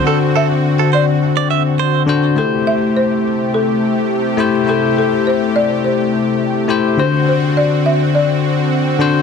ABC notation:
X:1
M:4/4
L:1/16
Q:1/4=104
K:Ador
V:1 name="Clean electric guitar"
A z A z2 A c z2 d e z c2 z2 | z16 | z16 | z16 |]
V:2 name="Marimba"
A2 e4 d8 z2 | A2 e2 c4 A6 z2 | A2 A2 c2 d2 c6 z2 | c2 c2 d2 e2 d6 z2 |]
V:3 name="Tine electric piano"
[D,DFc]6- [D,DFc] z6 z [D,DFc]2 | [A,EGc]6- [A,EGc] z6 z [A,EGc]2 | [A,EGc]6- [A,EGc] z6 z [A,EGc]2 | [D,DFc]6- [D,DFc] z6 z [D,DFc]2 |]
V:4 name="Analog synth pad"
[D,CF]16 | [C,A,G]16- | [C,A,G]16 | [D,CF]16 |]